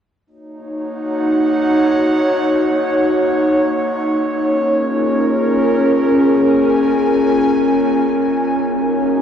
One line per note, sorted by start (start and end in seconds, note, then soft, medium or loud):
0.27 9.22 A#3 medium
0.27 4.37 D#4 medium
0.27 5.43 D#4 medium
0.27 4.37 F#4 medium
0.27 8.51 C#5 medium
0.55 5.96 C#5 medium
0.76 4.41 F#5 medium
4.41 9.22 C#4 medium
4.41 8.50 F4 medium
4.41 8.50 G#4 medium
4.55 9.22 A#4 medium
6.07 9.22 G#5 medium
8.55 9.22 D#4 medium
8.55 9.22 F#4 medium
8.55 9.22 C#5 medium
9.17 9.22 C#5 medium